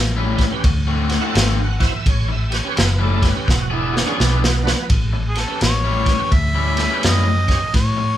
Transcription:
Already playing: fingered electric bass A1
0.17 overdriven electric guitar A2 G3 C#4 E4
0.37 tonewheel organ G4 B4, kick, snare, ride
0.51 tonewheel organ C#4 G4 B4
0.64 fingered electric bass D2, muted overdriven electric guitar stroke, kick, ride
0.87 overdriven electric guitar D3 A3 C4 F#4
1.09 tonewheel organ F#4 C5, snare, ride
1.14 tonewheel organ F#5
1.21 overdriven electric guitar D3 A3 C4 F#4, tonewheel organ E4 F#4 A4
1.35 fingered electric bass G#1, overdriven electric guitar D3 A3 C4 F#4, snare, ride
1.58 tonewheel organ F#5, muted overdriven electric guitar stroke
1.79 tonewheel organ E4 F#4 C5, kick, snare, ride
1.84 tonewheel organ E5
2.06 fingered electric bass A1, tonewheel organ C#5, kick, ride
2.28 tonewheel organ E5, muted overdriven electric guitar stroke
2.50 tonewheel organ G4 B4, snare, ride
2.55 tonewheel organ C#5
2.64 tonewheel organ C#4 G4 B4
2.77 fingered electric bass F#1, tonewheel organ B4, muted overdriven electric guitar stroke, snare, ride
2.99 overdriven electric guitar A2 G3 C#4 E4
3.03 tonewheel organ A4
3.22 tonewheel organ G4 A4 B4, kick, snare, ride
3.35 tonewheel organ C#4 G4 B4
3.48 fingered electric bass E1, tonewheel organ F#4, muted overdriven electric guitar stroke, kick, snare
3.70 overdriven electric guitar E3 B3 D4 G#4, tonewheel organ E4
3.93 tonewheel organ F#4 G#4, snare
3.97 tonewheel organ C#4
4.06 overdriven electric guitar E3 B3 D4 G#4, tonewheel organ D4 F#4 G#4
4.19 fingered electric bass B1, overdriven electric guitar E3 B3 D4 G#4, tonewheel organ B3, snare
4.42 muted overdriven electric guitar stroke, snare
4.63 tonewheel organ D4 F#4 B4
4.67 snare
4.90 fingered electric bass A1, kick, ride
5.13 muted overdriven electric guitar stroke
5.29 harmonica G#4
5.35 tonewheel organ G4 B4, harmonica A4, snare, ride
5.47 tonewheel organ C#4 G4 B4
5.61 fingered electric bass A1, harmonica C#5, muted overdriven electric guitar stroke, snare, ride
5.84 overdriven electric guitar A2 G3 C#4 E4
6.05 tonewheel organ G4 B4, kick, snare, ride
6.18 tonewheel organ C#4 G4 B4
6.32 fingered electric bass D2, harmonica E5, muted overdriven electric guitar stroke, kick, ride
6.55 overdriven electric guitar A2 G3 C#4 E4
6.76 tonewheel organ G4 A4, snare, ride
6.89 overdriven electric guitar A2 G3 C#4 E4, tonewheel organ C#4 G4 B4
7.03 fingered electric bass F#2, overdriven electric guitar A2 G3 C#4 E4, harmonica D#5, snare, ride
7.26 muted overdriven electric guitar stroke
7.47 tonewheel organ C#4 G4 C#5, kick, snare, ride
7.74 fingered electric bass A2, harmonica C#5, kick, snare, ride
7.97 muted overdriven electric guitar stroke

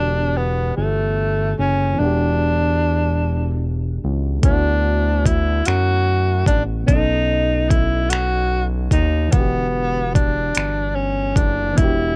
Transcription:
Already playing: analog synth bass E1, reed electric piano D3 E3 B3 F#4 G4, tenor saxophone D4
0.37 tenor saxophone B3
0.77 analog synth bass G1, tenor saxophone A3
1.59 analog synth bass F#1, tenor saxophone C#4
1.93 reed electric piano E3 B3
1.99 analog synth bass E1, tenor saxophone D4, reed electric piano D4 F#4
2.05 reed electric piano G4
4.04 analog synth bass C#2
4.39 reed electric piano D3 A3
4.43 analog synth bass D2, reed electric piano B3, tenor saxophone D4, kick, closed hi-hat
4.48 reed electric piano E4 F#4
5.26 tenor saxophone E4, kick, closed hi-hat
5.65 analog synth bass F#2, tenor saxophone F#4, finger snap, closed hi-hat
6.46 analog synth bass A1, tenor saxophone D4, kick, closed hi-hat
6.84 reed electric piano B2 B3, tenor saxophone D#4
6.88 analog synth bass B1, reed electric piano C#4, kick, closed hi-hat
6.93 reed electric piano A4 D#5
7.69 tenor saxophone E4, kick, closed hi-hat
8.10 tenor saxophone F#4, finger snap, closed hi-hat
8.91 analog synth bass D#2, tenor saxophone D#4, kick, closed hi-hat
9.28 reed electric piano E3 B3, tenor saxophone B3
9.32 analog synth bass E1, reed electric piano D3, kick, closed hi-hat
9.37 reed electric piano F#4 G4
10.15 tenor saxophone D4, kick, closed hi-hat
10.55 analog synth bass G1, finger snap, closed hi-hat
10.96 tenor saxophone C#4
11.36 analog synth bass F#1, tenor saxophone D4, kick, closed hi-hat
11.73 reed electric piano E3 B3
11.77 analog synth bass E1, reed electric piano D4, tenor saxophone E4, kick, closed hi-hat
11.81 reed electric piano F#4 G4

